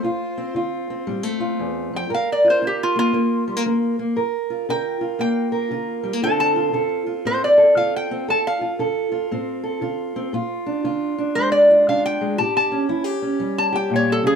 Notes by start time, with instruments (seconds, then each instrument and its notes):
Already playing: resonator guitar played with a steel bar C5
0.03 steel-string acoustic guitar D2 F4
0.38 steel-string acoustic guitar C4
0.55 steel-string acoustic guitar D3 F4
0.90 steel-string acoustic guitar C4
1.07 steel-string acoustic guitar A2 G3
1.23 steel-string acoustic guitar A3
1.40 steel-string acoustic guitar F4
1.59 steel-string acoustic guitar E2
1.94 steel-string acoustic guitar F2, resonator guitar played with a steel bar G5
2.09 steel-string acoustic guitar G2 A#4
2.14 resonator guitar played with a steel bar F5
2.32 resonator guitar played with a steel bar D5
2.44 steel-string acoustic guitar F4
2.50 resonator guitar played with a steel bar C5
2.62 steel-string acoustic guitar D3 F4
2.67 resonator guitar played with a steel bar G4
2.83 resonator guitar played with a steel bar F4
2.96 steel-string acoustic guitar A#3, resonator guitar played with a steel bar F4
3.13 steel-string acoustic guitar D3 A#3
3.48 steel-string acoustic guitar G3
3.57 steel-string acoustic guitar A#3
3.66 steel-string acoustic guitar D3 A#3
3.99 steel-string acoustic guitar A#3
4.16 steel-string acoustic guitar G2 A#4
4.50 steel-string acoustic guitar F4
4.69 steel-string acoustic guitar D3 A#4, resonator guitar played with a steel bar G5
5.01 steel-string acoustic guitar F4
5.19 steel-string acoustic guitar D3 A#3, resonator guitar played with a steel bar G5
5.52 steel-string acoustic guitar A#4
5.71 steel-string acoustic guitar D3 F4
6.03 steel-string acoustic guitar G3
6.13 steel-string acoustic guitar A#3
6.22 steel-string acoustic guitar D2 D3 C4 F4 A4, resonator guitar played with a steel bar A5
6.40 resonator guitar played with a steel bar A5
6.56 steel-string acoustic guitar F4
6.73 steel-string acoustic guitar D3 A4
7.07 steel-string acoustic guitar F4
7.25 steel-string acoustic guitar A2 C4, resonator guitar played with a steel bar C5
7.44 resonator guitar played with a steel bar D5
7.58 steel-string acoustic guitar A4
7.76 steel-string acoustic guitar D3 F4, resonator guitar played with a steel bar F5
7.96 resonator guitar played with a steel bar G5
8.11 steel-string acoustic guitar C4
8.28 steel-string acoustic guitar D2 A4, resonator guitar played with a steel bar A5
8.47 resonator guitar played with a steel bar F5
8.61 steel-string acoustic guitar F4
8.79 steel-string acoustic guitar D3 A4
9.12 steel-string acoustic guitar F4
9.31 steel-string acoustic guitar A2 C4
9.63 steel-string acoustic guitar A4
9.81 steel-string acoustic guitar D3 F4
10.16 steel-string acoustic guitar C4
10.33 steel-string acoustic guitar A#2 F4
10.66 steel-string acoustic guitar D4
10.84 steel-string acoustic guitar D3 F4
11.18 steel-string acoustic guitar D4
11.35 steel-string acoustic guitar F2 G#3, resonator guitar played with a steel bar C5
11.52 resonator guitar played with a steel bar D5
11.70 steel-string acoustic guitar F4
11.88 steel-string acoustic guitar D3 D4, resonator guitar played with a steel bar F5
12.06 resonator guitar played with a steel bar G5
12.21 steel-string acoustic guitar G#3
12.38 steel-string acoustic guitar A2 G4, resonator guitar played with a steel bar A5
12.57 resonator guitar played with a steel bar A5
12.72 steel-string acoustic guitar C#4
12.89 steel-string acoustic guitar E3 E4
13.04 steel-string acoustic guitar G4
13.22 steel-string acoustic guitar C#4
13.39 steel-string acoustic guitar E2 G3
13.58 resonator guitar played with a steel bar A5
13.72 steel-string acoustic guitar G4, resonator guitar played with a steel bar G5
13.90 steel-string acoustic guitar A#2
13.96 resonator guitar played with a steel bar C#5
14.12 resonator guitar played with a steel bar A4
14.23 steel-string acoustic guitar C#3, resonator guitar played with a steel bar G#4